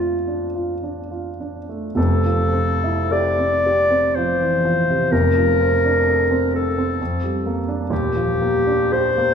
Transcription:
0, 0, Header, 1, 3, 480
1, 0, Start_track
1, 0, Key_signature, -1, "major"
1, 0, Tempo, 1136364
1, 831, Time_signature, 3, 2, 24, 8
1, 1317, Tempo, 1027397
1, 1797, Tempo, 960000
1, 2757, Tempo, 920245
1, 3717, Tempo, 993377
1, 4410, End_track
2, 0, Start_track
2, 0, Title_t, "Clarinet"
2, 0, Program_c, 0, 71
2, 0, Note_on_c, 0, 65, 75
2, 337, Note_off_c, 0, 65, 0
2, 828, Note_on_c, 0, 69, 91
2, 1317, Note_on_c, 0, 74, 97
2, 1324, Note_off_c, 0, 69, 0
2, 1800, Note_on_c, 0, 72, 77
2, 1808, Note_off_c, 0, 74, 0
2, 2282, Note_on_c, 0, 70, 89
2, 2289, Note_off_c, 0, 72, 0
2, 3004, Note_off_c, 0, 70, 0
2, 3011, Note_on_c, 0, 69, 81
2, 3473, Note_off_c, 0, 69, 0
2, 3724, Note_on_c, 0, 67, 88
2, 4210, Note_on_c, 0, 72, 103
2, 4217, Note_off_c, 0, 67, 0
2, 4410, Note_off_c, 0, 72, 0
2, 4410, End_track
3, 0, Start_track
3, 0, Title_t, "Grand piano"
3, 0, Program_c, 1, 0
3, 0, Control_c, 1, 64, 127
3, 0, Note_on_c, 1, 41, 49
3, 0, Note_on_c, 1, 48, 33
3, 0, Note_on_c, 1, 53, 40
3, 0, Note_on_c, 1, 57, 43
3, 0, Note_on_c, 1, 62, 38
3, 0, Note_on_c, 1, 65, 38
3, 65, Note_off_c, 1, 62, 0
3, 117, Note_on_c, 1, 62, 39
3, 187, Note_off_c, 1, 65, 0
3, 234, Note_on_c, 1, 65, 37
3, 306, Note_off_c, 1, 62, 0
3, 352, Note_on_c, 1, 62, 42
3, 423, Note_off_c, 1, 65, 0
3, 469, Note_on_c, 1, 65, 40
3, 544, Note_off_c, 1, 62, 0
3, 593, Note_on_c, 1, 62, 39
3, 665, Note_off_c, 1, 65, 0
3, 715, Note_off_c, 1, 57, 0
3, 715, Note_on_c, 1, 57, 38
3, 785, Note_off_c, 1, 62, 0
3, 811, Note_off_c, 1, 41, 0
3, 825, Note_on_c, 1, 29, 58
3, 831, Note_off_c, 1, 57, 0
3, 832, Note_on_c, 1, 41, 63
3, 840, Control_c, 1, 64, 0
3, 841, Note_off_c, 1, 48, 0
3, 841, Note_off_c, 1, 53, 0
3, 932, Control_c, 1, 64, 127
3, 948, Note_on_c, 1, 53, 45
3, 1068, Note_on_c, 1, 60, 50
3, 1149, Note_off_c, 1, 53, 0
3, 1199, Note_on_c, 1, 64, 51
3, 1268, Note_off_c, 1, 60, 0
3, 1321, Note_on_c, 1, 67, 50
3, 1395, Note_off_c, 1, 64, 0
3, 1443, Note_on_c, 1, 60, 47
3, 1519, Note_off_c, 1, 67, 0
3, 1572, Note_on_c, 1, 67, 51
3, 1635, Note_off_c, 1, 60, 0
3, 1685, Note_on_c, 1, 60, 51
3, 1755, Note_off_c, 1, 67, 0
3, 1809, Note_on_c, 1, 53, 51
3, 1872, Note_off_c, 1, 60, 0
3, 1929, Note_on_c, 1, 52, 42
3, 1998, Note_off_c, 1, 53, 0
3, 2046, Note_off_c, 1, 52, 0
3, 2049, Note_on_c, 1, 53, 50
3, 2175, Note_on_c, 1, 48, 49
3, 2238, Note_off_c, 1, 53, 0
3, 2258, Note_off_c, 1, 29, 0
3, 2262, Note_off_c, 1, 41, 0
3, 2284, Note_on_c, 1, 29, 59
3, 2286, Note_on_c, 1, 41, 60
3, 2288, Note_off_c, 1, 48, 0
3, 2289, Control_c, 1, 64, 0
3, 2369, Control_c, 1, 64, 127
3, 2408, Note_on_c, 1, 53, 46
3, 2529, Note_on_c, 1, 60, 55
3, 2595, Note_off_c, 1, 53, 0
3, 2650, Note_on_c, 1, 62, 55
3, 2715, Note_off_c, 1, 60, 0
3, 2767, Note_on_c, 1, 69, 49
3, 2837, Note_off_c, 1, 62, 0
3, 2884, Note_on_c, 1, 60, 51
3, 2959, Note_off_c, 1, 69, 0
3, 3005, Note_on_c, 1, 69, 50
3, 3078, Note_off_c, 1, 60, 0
3, 3131, Note_on_c, 1, 60, 50
3, 3197, Note_off_c, 1, 69, 0
3, 3225, Note_off_c, 1, 29, 0
3, 3226, Note_off_c, 1, 41, 0
3, 3247, Note_off_c, 1, 60, 0
3, 3251, Note_on_c, 1, 41, 59
3, 3254, Control_c, 1, 64, 0
3, 3336, Control_c, 1, 64, 127
3, 3369, Note_on_c, 1, 55, 43
3, 3486, Note_on_c, 1, 58, 51
3, 3553, Note_off_c, 1, 55, 0
3, 3601, Note_on_c, 1, 62, 53
3, 3672, Note_off_c, 1, 58, 0
3, 3707, Note_off_c, 1, 41, 0
3, 3712, Note_on_c, 1, 27, 60
3, 3715, Note_on_c, 1, 39, 64
3, 3720, Note_off_c, 1, 62, 0
3, 3727, Control_c, 1, 64, 0
3, 3811, Control_c, 1, 64, 127
3, 3838, Note_on_c, 1, 53, 47
3, 3961, Note_on_c, 1, 58, 51
3, 4038, Note_off_c, 1, 53, 0
3, 4086, Note_on_c, 1, 62, 54
3, 4160, Note_off_c, 1, 58, 0
3, 4211, Note_on_c, 1, 67, 49
3, 4277, Note_off_c, 1, 62, 0
3, 4331, Note_on_c, 1, 58, 49
3, 4393, Note_off_c, 1, 67, 0
3, 4410, Note_off_c, 1, 27, 0
3, 4410, Note_off_c, 1, 39, 0
3, 4410, Note_off_c, 1, 58, 0
3, 4410, End_track
0, 0, End_of_file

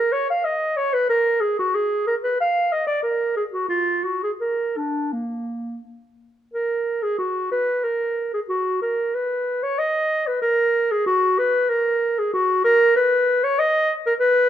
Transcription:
0, 0, Header, 1, 2, 480
1, 0, Start_track
1, 0, Tempo, 649351
1, 347, Time_signature, 3, 2, 24, 8
1, 2743, Tempo, 706714
1, 4663, Tempo, 647948
1, 8023, Tempo, 628272
1, 10636, End_track
2, 0, Start_track
2, 0, Title_t, "Clarinet"
2, 0, Program_c, 0, 71
2, 0, Note_on_c, 0, 70, 85
2, 91, Note_on_c, 0, 73, 81
2, 102, Note_off_c, 0, 70, 0
2, 219, Note_off_c, 0, 73, 0
2, 222, Note_on_c, 0, 77, 73
2, 332, Note_on_c, 0, 75, 71
2, 343, Note_off_c, 0, 77, 0
2, 568, Note_on_c, 0, 73, 77
2, 579, Note_off_c, 0, 75, 0
2, 691, Note_on_c, 0, 71, 79
2, 702, Note_off_c, 0, 73, 0
2, 805, Note_off_c, 0, 71, 0
2, 809, Note_on_c, 0, 70, 80
2, 1042, Note_on_c, 0, 68, 71
2, 1053, Note_off_c, 0, 70, 0
2, 1168, Note_off_c, 0, 68, 0
2, 1177, Note_on_c, 0, 66, 70
2, 1292, Note_on_c, 0, 68, 76
2, 1303, Note_off_c, 0, 66, 0
2, 1526, Note_off_c, 0, 68, 0
2, 1530, Note_on_c, 0, 70, 72
2, 1587, Note_off_c, 0, 70, 0
2, 1652, Note_on_c, 0, 71, 65
2, 1772, Note_off_c, 0, 71, 0
2, 1777, Note_on_c, 0, 77, 80
2, 2012, Note_on_c, 0, 75, 68
2, 2023, Note_off_c, 0, 77, 0
2, 2117, Note_off_c, 0, 75, 0
2, 2121, Note_on_c, 0, 74, 69
2, 2234, Note_off_c, 0, 74, 0
2, 2238, Note_on_c, 0, 70, 67
2, 2482, Note_off_c, 0, 70, 0
2, 2489, Note_on_c, 0, 68, 58
2, 2546, Note_off_c, 0, 68, 0
2, 2610, Note_on_c, 0, 66, 55
2, 2722, Note_off_c, 0, 66, 0
2, 2727, Note_on_c, 0, 65, 65
2, 2970, Note_on_c, 0, 66, 56
2, 2980, Note_off_c, 0, 65, 0
2, 3095, Note_off_c, 0, 66, 0
2, 3099, Note_on_c, 0, 68, 52
2, 3154, Note_off_c, 0, 68, 0
2, 3217, Note_on_c, 0, 70, 58
2, 3465, Note_on_c, 0, 62, 51
2, 3475, Note_off_c, 0, 70, 0
2, 3706, Note_on_c, 0, 58, 47
2, 3716, Note_off_c, 0, 62, 0
2, 4188, Note_off_c, 0, 58, 0
2, 4664, Note_on_c, 0, 70, 68
2, 5026, Note_on_c, 0, 68, 71
2, 5037, Note_off_c, 0, 70, 0
2, 5139, Note_off_c, 0, 68, 0
2, 5144, Note_on_c, 0, 66, 65
2, 5381, Note_off_c, 0, 66, 0
2, 5389, Note_on_c, 0, 71, 74
2, 5627, Note_on_c, 0, 70, 64
2, 5638, Note_off_c, 0, 71, 0
2, 5988, Note_off_c, 0, 70, 0
2, 5995, Note_on_c, 0, 68, 64
2, 6048, Note_off_c, 0, 68, 0
2, 6114, Note_on_c, 0, 66, 75
2, 6349, Note_off_c, 0, 66, 0
2, 6352, Note_on_c, 0, 70, 76
2, 6595, Note_on_c, 0, 71, 70
2, 6606, Note_off_c, 0, 70, 0
2, 6955, Note_on_c, 0, 73, 80
2, 6966, Note_off_c, 0, 71, 0
2, 7070, Note_on_c, 0, 75, 83
2, 7081, Note_off_c, 0, 73, 0
2, 7431, Note_on_c, 0, 71, 68
2, 7442, Note_off_c, 0, 75, 0
2, 7533, Note_off_c, 0, 71, 0
2, 7537, Note_on_c, 0, 70, 84
2, 7907, Note_on_c, 0, 68, 76
2, 7918, Note_off_c, 0, 70, 0
2, 8013, Note_off_c, 0, 68, 0
2, 8018, Note_on_c, 0, 66, 90
2, 8261, Note_on_c, 0, 71, 78
2, 8273, Note_off_c, 0, 66, 0
2, 8498, Note_on_c, 0, 70, 80
2, 8509, Note_off_c, 0, 71, 0
2, 8874, Note_on_c, 0, 68, 70
2, 8886, Note_off_c, 0, 70, 0
2, 8985, Note_off_c, 0, 68, 0
2, 8990, Note_on_c, 0, 66, 84
2, 9218, Note_off_c, 0, 66, 0
2, 9223, Note_on_c, 0, 70, 98
2, 9460, Note_off_c, 0, 70, 0
2, 9466, Note_on_c, 0, 71, 89
2, 9832, Note_on_c, 0, 73, 94
2, 9843, Note_off_c, 0, 71, 0
2, 9945, Note_on_c, 0, 75, 102
2, 9957, Note_off_c, 0, 73, 0
2, 10201, Note_off_c, 0, 75, 0
2, 10308, Note_on_c, 0, 70, 79
2, 10360, Note_off_c, 0, 70, 0
2, 10411, Note_on_c, 0, 71, 97
2, 10636, Note_off_c, 0, 71, 0
2, 10636, End_track
0, 0, End_of_file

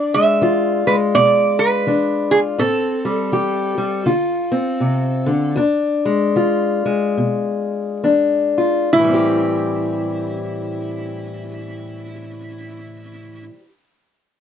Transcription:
0, 0, Header, 1, 3, 480
1, 0, Start_track
1, 0, Key_signature, 0, "minor"
1, 0, Tempo, 726392
1, 1714, Time_signature, 4, 2, 24, 8
1, 2680, Tempo, 758534
1, 3640, Tempo, 805369
1, 4600, Tempo, 873362
1, 5560, Tempo, 914634
1, 8431, End_track
2, 0, Start_track
2, 0, Title_t, "Resonator guitar played with a steel bar"
2, 0, Program_c, 0, 25
2, 0, Note_on_c, 0, 74, 93
2, 92, Note_off_c, 0, 74, 0
2, 95, Note_on_c, 0, 76, 82
2, 545, Note_off_c, 0, 76, 0
2, 575, Note_on_c, 0, 71, 80
2, 625, Note_off_c, 0, 71, 0
2, 759, Note_on_c, 0, 74, 105
2, 1051, Note_on_c, 0, 71, 93
2, 1059, Note_off_c, 0, 74, 0
2, 1502, Note_off_c, 0, 71, 0
2, 1528, Note_on_c, 0, 68, 74
2, 1578, Note_off_c, 0, 68, 0
2, 1714, Note_on_c, 0, 69, 89
2, 3617, Note_off_c, 0, 69, 0
2, 5559, Note_on_c, 0, 64, 82
2, 7925, Note_off_c, 0, 64, 0
2, 8431, End_track
3, 0, Start_track
3, 0, Title_t, "Steel-string acoustic guitar"
3, 0, Program_c, 1, 25
3, 0, Note_on_c, 1, 40, 75
3, 0, Note_on_c, 1, 62, 66
3, 102, Note_on_c, 1, 56, 57
3, 241, Note_off_c, 1, 40, 0
3, 274, Note_on_c, 1, 52, 66
3, 281, Note_on_c, 1, 65, 66
3, 567, Note_off_c, 1, 56, 0
3, 575, Note_on_c, 1, 56, 59
3, 718, Note_off_c, 1, 52, 0
3, 758, Note_on_c, 1, 47, 61
3, 1199, Note_off_c, 1, 47, 0
3, 1230, Note_off_c, 1, 62, 0
3, 1234, Note_on_c, 1, 52, 61
3, 1239, Note_on_c, 1, 62, 59
3, 1525, Note_off_c, 1, 65, 0
3, 1533, Note_on_c, 1, 65, 63
3, 1677, Note_off_c, 1, 52, 0
3, 1693, Note_off_c, 1, 62, 0
3, 1694, Note_off_c, 1, 56, 0
3, 1694, Note_off_c, 1, 65, 0
3, 1708, Note_on_c, 1, 45, 76
3, 1716, Note_on_c, 1, 60, 61
3, 2015, Note_on_c, 1, 55, 64
3, 2154, Note_off_c, 1, 45, 0
3, 2195, Note_on_c, 1, 52, 62
3, 2200, Note_on_c, 1, 67, 67
3, 2488, Note_off_c, 1, 55, 0
3, 2496, Note_on_c, 1, 55, 59
3, 2643, Note_off_c, 1, 52, 0
3, 2659, Note_off_c, 1, 60, 0
3, 2661, Note_off_c, 1, 67, 0
3, 2681, Note_on_c, 1, 50, 77
3, 2684, Note_off_c, 1, 55, 0
3, 2686, Note_on_c, 1, 65, 69
3, 2971, Note_on_c, 1, 60, 60
3, 3118, Note_off_c, 1, 50, 0
3, 3153, Note_on_c, 1, 48, 59
3, 3443, Note_on_c, 1, 50, 65
3, 3450, Note_off_c, 1, 48, 0
3, 3620, Note_off_c, 1, 60, 0
3, 3621, Note_off_c, 1, 65, 0
3, 3629, Note_on_c, 1, 40, 78
3, 3638, Note_off_c, 1, 50, 0
3, 3638, Note_on_c, 1, 62, 63
3, 3927, Note_on_c, 1, 56, 61
3, 4070, Note_off_c, 1, 40, 0
3, 4107, Note_on_c, 1, 52, 59
3, 4112, Note_on_c, 1, 65, 61
3, 4397, Note_off_c, 1, 56, 0
3, 4404, Note_on_c, 1, 56, 55
3, 4560, Note_off_c, 1, 52, 0
3, 4594, Note_on_c, 1, 47, 62
3, 5030, Note_off_c, 1, 47, 0
3, 5064, Note_off_c, 1, 62, 0
3, 5068, Note_on_c, 1, 52, 59
3, 5070, Note_on_c, 1, 62, 61
3, 5359, Note_off_c, 1, 65, 0
3, 5366, Note_on_c, 1, 65, 65
3, 5521, Note_off_c, 1, 52, 0
3, 5535, Note_off_c, 1, 56, 0
3, 5537, Note_off_c, 1, 65, 0
3, 5538, Note_off_c, 1, 62, 0
3, 5562, Note_on_c, 1, 45, 67
3, 5589, Note_on_c, 1, 52, 65
3, 5618, Note_on_c, 1, 55, 61
3, 5643, Note_on_c, 1, 60, 63
3, 5668, Note_on_c, 1, 67, 62
3, 7949, Note_off_c, 1, 45, 0
3, 7977, Note_off_c, 1, 52, 0
3, 8006, Note_off_c, 1, 55, 0
3, 8031, Note_off_c, 1, 60, 0
3, 8055, Note_off_c, 1, 67, 0
3, 8431, End_track
0, 0, End_of_file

